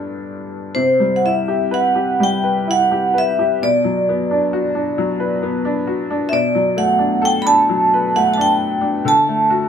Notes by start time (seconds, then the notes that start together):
Already playing: G2 D3 B3 D4
0.75 C3 C5
1.00 G3
1.16 F#5
1.25 E4 E5
1.48 G4
1.71 B4 F#5
1.95 G4
2.20 G3 G5
2.43 B4
2.67 E4 F#5
2.91 G4
3.14 B4
3.18 E5
3.39 G4
3.62 B2 D5
3.84 F#3
4.09 B3
4.31 D4
4.53 F#4
4.75 D4
4.98 F#3
5.20 B4
5.43 B3
5.65 D4
5.87 F#4
6.10 D4
6.29 B2 E5
6.33 D5
6.55 F#3
6.76 A3 F#5
6.99 D4
7.22 A4 G5
7.42 D4 B5
7.47 A5
7.69 F#3
7.94 B4
8.16 A3 F#5
8.34 D4 A5
8.41 G5
8.81 D4
9.05 D3 A5
9.28 A3
9.50 F#4